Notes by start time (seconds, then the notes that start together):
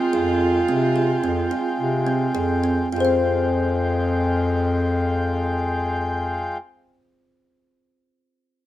Already playing: G#3 F4 G5
0.13 F2 G#4
0.68 C3 C4
0.96 G#4
1.23 F2 C4
1.51 F4
1.80 C3
2.06 C4
2.35 F2 G#4
2.64 C4
2.91 F2 G#3 F4 G5
2.96 G#4 C5
3.05 F5